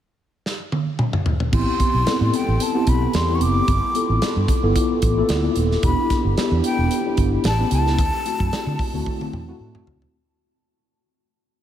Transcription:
0.46 snare soft
0.72 high tom medium
0.99 mid tom medium
1.13 mid tom medium
1.26 floor tom medium
1.40 floor tom medium
1.52 1.63 A1 loud
1.52 1.95 B3 medium
1.52 1.95 C4 medium
1.52 1.95 E4 medium
1.52 1.95 G4 medium
1.52 2.37 C6 medium
1.52 kick medium
1.52 crash medium
1.80 kick medium
1.80 closed hi-hat medium
1.94 2.03 B1 medium
2.06 2.58 B3 medium
2.06 2.58 C4 medium
2.06 2.58 E4 medium
2.06 2.59 A4 medium
2.06 snare loud
2.06 closed hi-hat medium
2.21 2.30 A2 medium
2.34 2.64 G5 medium
2.34 closed hi-hat medium
2.48 2.57 A1 medium
2.60 2.90 A5 medium
2.60 closed hi-hat medium
2.74 3.15 B3 medium
2.74 3.15 C4 medium
2.74 3.15 E4 medium
2.74 3.15 G4 medium
2.87 3.06 B1 medium
2.87 3.17 B5 medium
2.87 kick medium
2.87 closed hi-hat medium
3.14 3.43 E2 medium
3.14 3.37 C6 medium
3.14 snare loud
3.14 closed hi-hat medium
3.28 3.68 B3 medium
3.28 3.68 C4 medium
3.28 3.68 E4 medium
3.28 3.69 G4 medium
3.35 3.44 C#6 medium
3.41 3.60 F#1 medium
3.41 4.23 D6 loud
3.41 closed hi-hat medium
3.68 3.78 G1 loud
3.68 kick medium
3.68 closed hi-hat medium
3.95 4.47 B3 medium
3.95 4.46 E4 soft
3.95 4.47 F4 medium
3.95 4.47 A4 medium
3.95 closed hi-hat medium
4.09 4.18 A1 medium
4.22 snare loud
4.22 closed hi-hat medium
4.36 4.45 G2 medium
4.48 kick medium
4.48 closed hi-hat medium
4.63 4.72 G1 medium
4.63 5.03 B3 medium
4.63 5.04 E4 medium
4.63 5.04 F4 medium
4.63 5.04 A4 medium
4.76 kick medium
4.76 closed hi-hat medium
5.02 5.21 A1 medium
5.02 kick medium
5.02 closed hi-hat medium
5.17 5.23 A#3 medium
5.17 5.69 E4 medium
5.17 5.69 F4 medium
5.17 5.69 A4 medium
5.23 5.71 B3 medium
5.29 5.48 D2 medium
5.29 snare loud
5.29 closed hi-hat medium
5.56 5.75 D#1 medium
5.56 closed hi-hat medium
5.71 snare soft
5.83 5.93 E1 medium
5.83 6.25 B3 medium
5.83 6.26 D4 medium
5.83 6.26 E4 medium
5.83 6.26 G4 medium
5.83 6.34 B5 loud
5.83 kick loud
5.83 closed hi-hat medium
6.10 kick medium
6.10 snare soft
6.10 closed hi-hat medium
6.25 6.33 G1 medium
6.37 6.89 B3 medium
6.37 6.89 D4 medium
6.37 6.89 E4 medium
6.37 6.89 G4 medium
6.37 muted fingered electric bass stroke soft
6.37 snare loud
6.37 closed hi-hat medium
6.51 6.60 E2 medium
6.64 7.15 G5 loud
6.64 closed hi-hat medium
6.78 6.87 E1 medium
6.91 closed hi-hat medium
7.06 7.45 B3 medium
7.06 7.45 D4 medium
7.06 7.45 E4 medium
7.06 7.45 G4 medium
7.17 7.36 G1 medium
7.17 kick medium
7.17 closed hi-hat medium
7.44 7.63 A1 medium
7.44 7.71 A5 medium
7.44 snare loud
7.44 closed hi-hat medium
7.59 7.99 B3 medium
7.59 7.99 C#4 medium
7.59 7.99 E4 medium
7.59 7.99 G4 medium
7.71 7.99 C#2 medium
7.71 9.57 A5 loud
7.71 closed hi-hat medium
7.87 snare soft
7.99 8.09 D2 medium
7.99 kick loud
7.99 closed hi-hat medium
8.25 8.77 A3 medium
8.25 8.77 C4 medium
8.25 8.77 E4 medium
8.25 8.78 F#4 medium
8.25 closed hi-hat medium
8.40 8.49 F#2 medium
8.40 kick medium
8.52 muted fingered electric bass stroke soft
8.52 snare loud
8.52 closed hi-hat medium
8.67 8.75 D3 medium
8.79 kick medium
8.79 open hi-hat medium
8.93 9.02 D2 medium
8.93 9.34 A3 medium
8.93 9.34 C4 medium
8.93 9.34 E4 medium
8.93 9.35 F#4 medium
9.06 kick medium
9.06 high tom soft
9.21 high tom soft
9.33 9.52 E2 medium
9.33 mid tom medium
9.48 9.99 A3 medium
9.48 9.99 C4 medium
9.48 9.99 E4 medium
9.48 10.00 F#4 medium
9.60 9.79 A2 medium
9.75 mid tom medium
9.87 10.06 C#2 medium
9.87 floor tom medium
10.02 floor tom medium

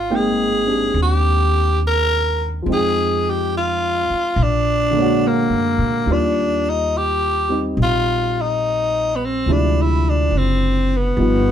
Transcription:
0.00 0.90 G#1 medium
0.00 0.17 F4 medium
0.10 2.64 G#3 soft
0.10 2.66 A#3 soft
0.10 0.65 C4 soft
0.10 2.67 D#4 soft
0.10 2.67 G5 medium
0.16 0.98 G#4 medium
0.67 2.66 C4 soft
0.67 2.67 D4 soft
0.67 2.67 G4 soft
0.94 2.62 D#2 medium
1.03 1.80 G4 medium
1.87 2.48 A#4 medium
2.62 4.06 F2 medium
2.62 4.35 F3 soft
2.62 4.36 G#3 soft
2.68 4.38 C4 soft
2.68 4.39 D#4 soft
2.73 3.31 G#4 medium
2.73 4.40 G5 soft
3.30 3.54 G4 medium
3.57 4.44 F4 medium
4.10 muted upright bass stroke soft
4.36 5.46 A#1 medium
4.43 5.29 D4 medium
4.91 6.05 D3 medium
4.91 6.06 G#3 soft
4.97 6.07 A#3 soft
4.97 6.09 C#5 soft
5.02 6.10 F#4 medium
5.27 6.14 A#3 medium
5.50 5.76 F#2 soft
5.78 6.05 A#2 medium
6.06 7.72 D#2 medium
6.06 9.46 D#3 soft
6.06 7.47 G3 soft
6.06 9.47 A#3 soft
6.10 6.71 D4 medium
6.10 9.48 F4 soft
6.10 9.48 D5 soft
6.70 6.99 D#4 medium
6.97 7.62 G4 medium
7.49 9.47 G3 soft
7.49 9.47 C4 soft
7.49 9.48 D#4 soft
7.77 9.42 A#1 medium
7.83 8.43 F4 medium
8.41 9.17 D#4 medium
9.16 9.27 B3 soft
9.25 9.54 C4 medium
9.46 10.27 D2 medium
9.46 11.18 C3 soft
9.46 11.16 F3 soft
9.46 11.17 G#3 soft
9.46 11.18 D4 soft
9.46 11.18 E4 soft
9.52 9.83 D4 medium
9.82 10.11 E4 medium
10.10 10.39 D4 medium
10.31 11.12 F#1 medium
10.38 10.98 C4 medium
10.97 11.52 B3 medium
11.17 11.52 G1 medium
11.17 11.52 F3 soft
11.17 11.52 G3 soft
11.17 11.52 B3 soft
11.17 11.52 D#4 soft
11.21 11.52 F4 soft

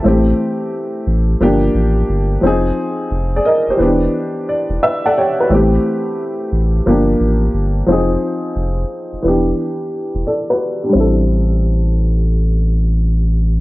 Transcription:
0.03 0.33 A1 loud
0.03 1.37 E3 medium
0.03 1.37 A3 medium
0.03 1.38 C4 medium
0.08 1.39 G4 medium
1.07 1.35 A1 medium
1.41 1.69 G1 loud
1.41 2.40 F3 medium
1.41 2.43 A#3 medium
1.41 2.43 D4 medium
1.41 2.43 G4 medium
1.74 2.03 A1 medium
2.09 2.38 G1 medium
2.41 2.71 F1 medium
2.41 3.75 F3 medium
2.41 3.76 C4 medium
2.41 3.77 D#4 medium
2.46 2.78 G#4 medium
3.11 3.40 F1 loud
3.36 3.46 G#4 medium
3.36 3.46 D5 medium
3.45 3.67 A#4 medium
3.45 3.66 D#5 medium
3.68 3.72 E1 soft
3.68 3.81 G4 soft
3.68 4.01 C5 medium
3.77 4.08 E1 medium
3.77 5.45 E3 medium
3.77 5.46 B3 medium
3.77 5.47 D4 medium
3.83 4.81 G4 medium
4.49 4.79 D5 medium
4.70 4.79 E1 medium
4.83 5.03 B4 medium
4.83 5.03 E5 medium
5.06 5.16 A4 medium
5.06 5.15 D5 medium
5.06 5.15 F#5 medium
5.18 5.38 G4 medium
5.18 5.38 C#5 medium
5.18 5.48 G5 medium
5.40 5.72 F#4 soft
5.40 5.71 B4 medium
5.49 5.78 A1 loud
5.49 6.83 E3 medium
5.49 6.83 A3 medium
5.49 6.84 C4 medium
5.54 6.85 G4 medium
6.52 6.81 A1 medium
6.86 7.15 G1 loud
6.86 7.85 F3 medium
6.86 7.88 A#3 medium
6.86 7.89 D4 medium
6.86 7.89 G4 medium
7.20 7.49 A1 medium
7.54 7.83 G1 medium
7.86 8.17 F1 medium
7.86 9.20 F3 medium
7.86 9.21 C4 medium
7.86 9.22 D#4 medium
7.92 9.23 G#4 medium
8.56 8.85 F1 medium
9.13 9.17 E1 soft
9.22 9.53 E1 medium
9.22 10.90 E3 medium
9.22 10.91 B3 medium
9.22 10.25 D4 medium
9.28 10.26 G4 medium
10.15 10.25 E1 medium
10.27 10.48 A4 medium
10.27 10.48 D5 medium
10.50 10.82 F#4 medium
10.50 10.82 B4 medium
10.84 11.16 D4 soft
10.84 11.16 G4 medium
10.89 13.60 G3 medium
10.89 13.60 C4 medium
10.95 13.60 A1 medium
10.95 13.60 E4 medium
11.00 13.60 A4 medium

